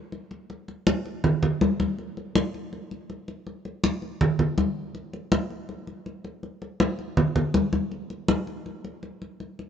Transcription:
0, 0, Header, 1, 2, 480
1, 0, Start_track
1, 0, Tempo, 370828
1, 643, Time_signature, 4, 2, 24, 8
1, 12548, End_track
2, 0, Start_track
2, 0, Title_t, "Drums"
2, 159, Note_on_c, 9, 63, 34
2, 289, Note_off_c, 9, 63, 0
2, 400, Note_on_c, 9, 63, 36
2, 530, Note_off_c, 9, 63, 0
2, 645, Note_on_c, 9, 63, 38
2, 775, Note_off_c, 9, 63, 0
2, 883, Note_on_c, 9, 63, 37
2, 1013, Note_off_c, 9, 63, 0
2, 1123, Note_on_c, 9, 63, 93
2, 1252, Note_off_c, 9, 63, 0
2, 1366, Note_on_c, 9, 63, 33
2, 1496, Note_off_c, 9, 63, 0
2, 1605, Note_on_c, 9, 63, 40
2, 1605, Note_on_c, 9, 64, 92
2, 1734, Note_off_c, 9, 63, 0
2, 1734, Note_off_c, 9, 64, 0
2, 1846, Note_on_c, 9, 63, 36
2, 1846, Note_on_c, 9, 64, 78
2, 1975, Note_off_c, 9, 63, 0
2, 1975, Note_off_c, 9, 64, 0
2, 2087, Note_on_c, 9, 63, 90
2, 2217, Note_off_c, 9, 63, 0
2, 2327, Note_on_c, 9, 63, 73
2, 2456, Note_off_c, 9, 63, 0
2, 2569, Note_on_c, 9, 63, 36
2, 2699, Note_off_c, 9, 63, 0
2, 2811, Note_on_c, 9, 63, 33
2, 2940, Note_off_c, 9, 63, 0
2, 3048, Note_on_c, 9, 63, 89
2, 3177, Note_off_c, 9, 63, 0
2, 3292, Note_on_c, 9, 63, 33
2, 3421, Note_off_c, 9, 63, 0
2, 3530, Note_on_c, 9, 63, 39
2, 3660, Note_off_c, 9, 63, 0
2, 3771, Note_on_c, 9, 63, 35
2, 3901, Note_off_c, 9, 63, 0
2, 4008, Note_on_c, 9, 63, 36
2, 4138, Note_off_c, 9, 63, 0
2, 4247, Note_on_c, 9, 63, 34
2, 4377, Note_off_c, 9, 63, 0
2, 4486, Note_on_c, 9, 63, 37
2, 4616, Note_off_c, 9, 63, 0
2, 4727, Note_on_c, 9, 63, 36
2, 4856, Note_off_c, 9, 63, 0
2, 4966, Note_on_c, 9, 63, 90
2, 5095, Note_off_c, 9, 63, 0
2, 5205, Note_on_c, 9, 63, 32
2, 5335, Note_off_c, 9, 63, 0
2, 5448, Note_on_c, 9, 63, 39
2, 5448, Note_on_c, 9, 64, 94
2, 5578, Note_off_c, 9, 63, 0
2, 5578, Note_off_c, 9, 64, 0
2, 5684, Note_on_c, 9, 63, 38
2, 5684, Note_on_c, 9, 64, 72
2, 5813, Note_off_c, 9, 63, 0
2, 5813, Note_off_c, 9, 64, 0
2, 5925, Note_on_c, 9, 63, 88
2, 6054, Note_off_c, 9, 63, 0
2, 6403, Note_on_c, 9, 63, 37
2, 6533, Note_off_c, 9, 63, 0
2, 6646, Note_on_c, 9, 63, 35
2, 6775, Note_off_c, 9, 63, 0
2, 6883, Note_on_c, 9, 63, 98
2, 7012, Note_off_c, 9, 63, 0
2, 7122, Note_on_c, 9, 63, 33
2, 7252, Note_off_c, 9, 63, 0
2, 7363, Note_on_c, 9, 63, 40
2, 7492, Note_off_c, 9, 63, 0
2, 7603, Note_on_c, 9, 63, 38
2, 7732, Note_off_c, 9, 63, 0
2, 7844, Note_on_c, 9, 63, 38
2, 7974, Note_off_c, 9, 63, 0
2, 8083, Note_on_c, 9, 63, 33
2, 8212, Note_off_c, 9, 63, 0
2, 8323, Note_on_c, 9, 63, 35
2, 8452, Note_off_c, 9, 63, 0
2, 8565, Note_on_c, 9, 63, 34
2, 8695, Note_off_c, 9, 63, 0
2, 8803, Note_on_c, 9, 63, 101
2, 8932, Note_off_c, 9, 63, 0
2, 9044, Note_on_c, 9, 63, 37
2, 9174, Note_off_c, 9, 63, 0
2, 9282, Note_on_c, 9, 63, 41
2, 9282, Note_on_c, 9, 64, 103
2, 9412, Note_off_c, 9, 63, 0
2, 9412, Note_off_c, 9, 64, 0
2, 9522, Note_on_c, 9, 63, 36
2, 9522, Note_on_c, 9, 64, 80
2, 9652, Note_off_c, 9, 63, 0
2, 9652, Note_off_c, 9, 64, 0
2, 9763, Note_on_c, 9, 63, 90
2, 9892, Note_off_c, 9, 63, 0
2, 10002, Note_on_c, 9, 63, 70
2, 10131, Note_off_c, 9, 63, 0
2, 10245, Note_on_c, 9, 63, 36
2, 10375, Note_off_c, 9, 63, 0
2, 10486, Note_on_c, 9, 63, 34
2, 10616, Note_off_c, 9, 63, 0
2, 10723, Note_on_c, 9, 63, 100
2, 10853, Note_off_c, 9, 63, 0
2, 10966, Note_on_c, 9, 63, 33
2, 11096, Note_off_c, 9, 63, 0
2, 11208, Note_on_c, 9, 63, 40
2, 11337, Note_off_c, 9, 63, 0
2, 11449, Note_on_c, 9, 63, 37
2, 11578, Note_off_c, 9, 63, 0
2, 11686, Note_on_c, 9, 63, 37
2, 11816, Note_off_c, 9, 63, 0
2, 11930, Note_on_c, 9, 63, 36
2, 12060, Note_off_c, 9, 63, 0
2, 12170, Note_on_c, 9, 63, 36
2, 12299, Note_off_c, 9, 63, 0
2, 12414, Note_on_c, 9, 63, 36
2, 12543, Note_off_c, 9, 63, 0
2, 12548, End_track
0, 0, End_of_file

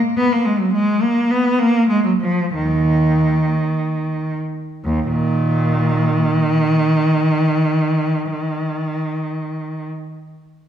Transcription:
0, 0, Header, 1, 2, 480
1, 0, Start_track
1, 0, Tempo, 546448
1, 632, Time_signature, 6, 3, 24, 8
1, 633, Tempo, 584226
1, 1593, Tempo, 649351
1, 2073, Tempo, 700117
1, 2553, Tempo, 750939
1, 3033, Tempo, 832178
1, 6895, End_track
2, 0, Start_track
2, 0, Title_t, "Cello"
2, 0, Program_c, 0, 42
2, 148, Note_on_c, 0, 59, 88
2, 266, Note_off_c, 0, 59, 0
2, 282, Note_on_c, 0, 58, 80
2, 396, Note_off_c, 0, 58, 0
2, 398, Note_on_c, 0, 56, 81
2, 515, Note_off_c, 0, 56, 0
2, 521, Note_on_c, 0, 54, 77
2, 638, Note_off_c, 0, 54, 0
2, 641, Note_on_c, 0, 56, 83
2, 866, Note_off_c, 0, 56, 0
2, 880, Note_on_c, 0, 58, 80
2, 1112, Note_off_c, 0, 58, 0
2, 1115, Note_on_c, 0, 59, 79
2, 1346, Note_on_c, 0, 58, 89
2, 1351, Note_off_c, 0, 59, 0
2, 1593, Note_off_c, 0, 58, 0
2, 1594, Note_on_c, 0, 56, 78
2, 1706, Note_off_c, 0, 56, 0
2, 1710, Note_on_c, 0, 54, 65
2, 1757, Note_off_c, 0, 54, 0
2, 1828, Note_on_c, 0, 53, 71
2, 2069, Note_off_c, 0, 53, 0
2, 2079, Note_on_c, 0, 39, 54
2, 2080, Note_on_c, 0, 51, 74
2, 2763, Note_off_c, 0, 39, 0
2, 3254, Note_off_c, 0, 51, 0
2, 3526, Note_on_c, 0, 39, 66
2, 3663, Note_off_c, 0, 39, 0
2, 3665, Note_on_c, 0, 46, 65
2, 3665, Note_on_c, 0, 51, 76
2, 4604, Note_off_c, 0, 46, 0
2, 6428, Note_off_c, 0, 51, 0
2, 6895, End_track
0, 0, End_of_file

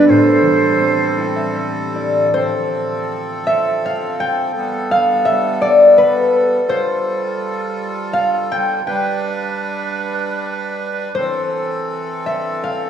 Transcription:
0, 0, Header, 1, 4, 480
1, 0, Start_track
1, 0, Tempo, 715137
1, 44, Time_signature, 3, 2, 24, 8
1, 524, Tempo, 773196
1, 1964, Tempo, 715990
1, 5324, Tempo, 739827
1, 6284, Tempo, 767263
1, 7724, Tempo, 728155
1, 8386, End_track
2, 0, Start_track
2, 0, Title_t, "Flute"
2, 0, Program_c, 0, 73
2, 0, Note_on_c, 0, 74, 85
2, 65, Note_on_c, 0, 72, 76
2, 75, Note_off_c, 0, 74, 0
2, 1007, Note_off_c, 0, 72, 0
2, 8386, End_track
3, 0, Start_track
3, 0, Title_t, "Harp"
3, 0, Program_c, 1, 46
3, 0, Note_on_c, 1, 43, 63
3, 0, Note_on_c, 1, 50, 47
3, 0, Note_on_c, 1, 55, 52
3, 0, Note_on_c, 1, 59, 54
3, 0, Note_on_c, 1, 62, 55
3, 60, Note_on_c, 1, 45, 57
3, 77, Note_off_c, 1, 43, 0
3, 77, Note_off_c, 1, 50, 0
3, 77, Note_off_c, 1, 55, 0
3, 283, Note_on_c, 1, 52, 45
3, 532, Note_on_c, 1, 60, 43
3, 569, Note_off_c, 1, 59, 0
3, 768, Note_on_c, 1, 64, 46
3, 772, Note_on_c, 1, 79, 58
3, 884, Note_on_c, 1, 76, 54
3, 1000, Note_on_c, 1, 67, 48
3, 1003, Note_off_c, 1, 76, 0
3, 1006, Note_on_c, 1, 76, 54
3, 1248, Note_off_c, 1, 64, 0
3, 1250, Note_on_c, 1, 64, 42
3, 1254, Note_on_c, 1, 74, 51
3, 1382, Note_off_c, 1, 62, 0
3, 1491, Note_on_c, 1, 72, 84
3, 1522, Note_off_c, 1, 45, 0
3, 1522, Note_off_c, 1, 52, 0
3, 1736, Note_off_c, 1, 79, 0
3, 2084, Note_off_c, 1, 76, 0
3, 2210, Note_on_c, 1, 76, 79
3, 2428, Note_off_c, 1, 60, 0
3, 2435, Note_off_c, 1, 74, 0
3, 2471, Note_on_c, 1, 77, 80
3, 2501, Note_off_c, 1, 67, 0
3, 2511, Note_off_c, 1, 64, 0
3, 2511, Note_off_c, 1, 76, 0
3, 2702, Note_on_c, 1, 79, 93
3, 2780, Note_off_c, 1, 72, 0
3, 3177, Note_off_c, 1, 77, 0
3, 3180, Note_on_c, 1, 77, 81
3, 3407, Note_on_c, 1, 76, 84
3, 3447, Note_off_c, 1, 77, 0
3, 3651, Note_on_c, 1, 74, 83
3, 3743, Note_off_c, 1, 79, 0
3, 3893, Note_on_c, 1, 71, 82
3, 4373, Note_on_c, 1, 72, 86
3, 4413, Note_off_c, 1, 71, 0
3, 4562, Note_off_c, 1, 76, 0
3, 4889, Note_off_c, 1, 74, 0
3, 5338, Note_on_c, 1, 77, 81
3, 5400, Note_off_c, 1, 77, 0
3, 5586, Note_on_c, 1, 79, 81
3, 5688, Note_off_c, 1, 72, 0
3, 5813, Note_off_c, 1, 79, 0
3, 5815, Note_on_c, 1, 79, 75
3, 6998, Note_off_c, 1, 79, 0
3, 7258, Note_on_c, 1, 72, 81
3, 7967, Note_on_c, 1, 76, 76
3, 8214, Note_on_c, 1, 77, 79
3, 8253, Note_off_c, 1, 76, 0
3, 8386, Note_off_c, 1, 72, 0
3, 8386, Note_off_c, 1, 77, 0
3, 8386, End_track
4, 0, Start_track
4, 0, Title_t, "Accordion"
4, 0, Program_c, 2, 21
4, 0, Note_on_c, 2, 55, 61
4, 37, Note_on_c, 2, 60, 62
4, 37, Note_on_c, 2, 69, 75
4, 1465, Note_off_c, 2, 55, 0
4, 1473, Note_off_c, 2, 60, 0
4, 1474, Note_off_c, 2, 69, 0
4, 1500, Note_on_c, 2, 60, 52
4, 1500, Note_on_c, 2, 69, 68
4, 1504, Note_on_c, 2, 53, 56
4, 2915, Note_off_c, 2, 69, 0
4, 2916, Note_off_c, 2, 60, 0
4, 2918, Note_off_c, 2, 53, 0
4, 2925, Note_on_c, 2, 69, 71
4, 2933, Note_on_c, 2, 59, 62
4, 2937, Note_on_c, 2, 55, 60
4, 4344, Note_off_c, 2, 59, 0
4, 4363, Note_on_c, 2, 65, 63
4, 5773, Note_off_c, 2, 69, 0
4, 5779, Note_off_c, 2, 55, 0
4, 5789, Note_off_c, 2, 65, 0
4, 5806, Note_on_c, 2, 55, 65
4, 5808, Note_on_c, 2, 71, 68
4, 5812, Note_on_c, 2, 62, 61
4, 7242, Note_off_c, 2, 55, 0
4, 7243, Note_off_c, 2, 71, 0
4, 7245, Note_off_c, 2, 62, 0
4, 7267, Note_on_c, 2, 52, 61
4, 7273, Note_on_c, 2, 69, 65
4, 7277, Note_on_c, 2, 60, 55
4, 8386, Note_off_c, 2, 52, 0
4, 8386, Note_off_c, 2, 60, 0
4, 8386, Note_off_c, 2, 69, 0
4, 8386, End_track
0, 0, End_of_file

